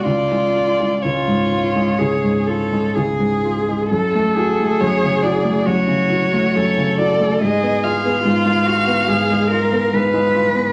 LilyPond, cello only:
\new Staff \with { instrumentName = "Cello" } { \time 4/4 \key fis \minor \tempo 4 = 68 eis'4 eis'4 gis'8 a'8 gis'4 | a'8 gis'4. fis'4 a'4 | aes'4 f'8 fis'8 aes'8 ais'8 ces''4 | }